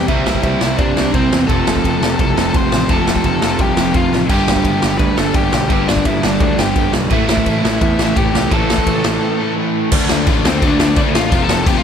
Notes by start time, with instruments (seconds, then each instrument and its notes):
Already playing: distorted electric guitar C4, overdriven electric guitar C4
0.08 picked electric bass C2, overdriven electric guitar C3 G3 C4, lead electric guitar E4 E5, kick, ride
0.26 picked electric bass C2, snare
0.35 kick
0.43 picked electric bass C2, lead electric guitar E4 E5, kick, ride
0.60 picked electric bass C2, distorted electric guitar C3 G3 C4, snare
0.77 picked electric bass G2, lead electric guitar D4 D5, kick, ride
0.97 picked electric bass C2, overdriven electric guitar C3 G3 C4, snare
1.14 picked electric bass C2, overdriven electric guitar C3 G3 C4, lead electric guitar C4 C5, kick, ride
1.32 picked electric bass E2, snare
1.47 picked electric bass F1, overdriven electric guitar F2 C3 F3, lead electric guitar A4 A5, kick, ride
1.67 picked electric bass F1, snare
1.76 kick
1.84 picked electric bass F1, kick, ride
2.01 picked electric bass F1, distorted electric guitar F2 C3 F3, snare
2.19 picked electric bass C2, lead electric guitar A4 A5, kick, ride
2.36 picked electric bass F1, overdriven electric guitar F2 C3 F3, snare
2.54 picked electric bass F1, overdriven electric guitar F2 C3 F3, lead electric guitar C6, kick, ride
2.58 lead electric guitar C5
2.72 picked electric bass A1, snare
2.89 picked electric bass F1, overdriven electric guitar F2 C3 F3, lead electric guitar A4 A5, kick, ride
3.07 picked electric bass F1, snare
3.16 kick
3.24 picked electric bass F1, lead electric guitar A4 A5, kick, ride
3.42 picked electric bass F1, distorted electric guitar F2 C3 F3, snare
3.59 picked electric bass C2, lead electric guitar G5, kick, ride
3.63 lead electric guitar G4
3.77 picked electric bass F1, overdriven electric guitar F2 C3 F3, snare
3.94 picked electric bass F1, overdriven electric guitar F2 C3 F3, lead electric guitar F4 F5, kick, ride
4.12 picked electric bass A1, snare
4.29 picked electric bass G1, overdriven electric guitar G2 D3 G3, lead electric guitar G4 G5, kick, crash
4.48 picked electric bass G1, snare
4.56 kick
4.64 picked electric bass G1, kick, ride
4.81 picked electric bass G1, distorted electric guitar G2 D3 G3, snare
4.98 picked electric bass D2, lead electric guitar B4 B5, kick, ride
5.17 picked electric bass G1, overdriven electric guitar G2 D3 G3, lead electric guitar A4 A5, snare
5.34 picked electric bass G1, overdriven electric guitar G2 D3 G3, lead electric guitar G4 G5, kick, ride
5.53 picked electric bass B1, snare
5.70 picked electric bass G1, overdriven electric guitar G2 D3 G3, lead electric guitar G4 G5, kick, ride
5.88 picked electric bass G1, lead electric guitar D4 D5, snare
5.97 kick
6.05 picked electric bass G1, lead electric guitar E4 E5, kick, ride
6.22 picked electric bass G1, distorted electric guitar G2 D3 G3, lead electric guitar D5, snare
6.26 lead electric guitar D4
6.40 picked electric bass D2, lead electric guitar D4 D5, kick, ride
6.59 picked electric bass G1, overdriven electric guitar G2 D3 G3, lead electric guitar G4 G5, snare
6.76 picked electric bass G1, overdriven electric guitar G2 D3 G3, kick, ride
6.93 picked electric bass B1, snare
7.10 picked electric bass A1, overdriven electric guitar A2 E3, lead electric guitar E4 E5, kick, ride
7.14 overdriven electric guitar A3
7.29 picked electric bass A1, snare
7.37 kick
7.46 picked electric bass A1, kick, ride
7.63 picked electric bass A1, distorted electric guitar A2 E3 A3, snare
7.81 picked electric bass E2, lead electric guitar E4 E5, kick, ride
7.99 picked electric bass A1, overdriven electric guitar A2 E3 A3, snare
8.16 picked electric bass A1, overdriven electric guitar A2 E3 A3, lead electric guitar G4 G5, kick, ride
8.35 picked electric bass C2, snare
8.51 picked electric bass A1, overdriven electric guitar A2 E3 A3, lead electric guitar A4 A5, kick, ride
8.70 picked electric bass A1, snare
8.78 kick
8.87 picked electric bass A1, kick, ride
9.03 picked electric bass A1, distorted electric guitar A2 E3 A3, snare
9.40 overdriven electric guitar A2 E3 A3
9.57 overdriven electric guitar A2 E3 A3
9.92 picked electric bass D2, overdriven electric guitar D3 A3 D4, kick, crash
10.09 picked electric bass D2, snare
10.26 picked electric bass A1, overdriven electric guitar D3 A3 D4, kick, crash
10.44 picked electric bass D2, overdriven electric guitar D3 A3 D4, lead electric guitar C4, snare
10.50 lead electric guitar C5
10.61 picked electric bass D2, overdriven electric guitar D3 A3 D4, lead electric guitar D4, kick, crash
10.67 lead electric guitar D5
10.80 picked electric bass D2, snare
10.96 picked electric bass D2, overdriven electric guitar D3 A3 D4, kick, crash
11.13 picked electric bass A1, overdriven electric guitar D3 A3 D4, lead electric guitar F4, snare
11.17 lead electric guitar F5
11.32 picked electric bass F1, overdriven electric guitar F2 C3 F3, kick, crash
11.42 lead electric guitar A4 A5
11.49 picked electric bass F1, snare
11.66 picked electric bass F1, overdriven electric guitar F2 C3 F3, lead electric guitar G4 G5, kick, crash
11.77 lead electric guitar F4 F5